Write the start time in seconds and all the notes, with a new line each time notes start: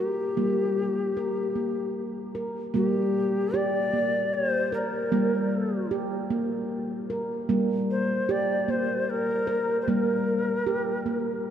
Already playing: G3 G4
0.00 A#4
0.37 G3 A#3
1.17 A#4
1.56 A#3
2.35 A#4
2.74 G3 A#3 G4
3.54 G4 D5
3.93 A#3
4.34 C5
4.72 A#4
5.12 G3 A#3
5.91 G4
6.30 A#3
7.10 A#4
7.49 G3 A#3
7.91 C5
8.29 G4 D5
8.68 A#3 C5
9.10 A#4
9.47 A#4
9.82 C5
9.88 G3 A#3 A#4
10.67 G4
11.06 A#3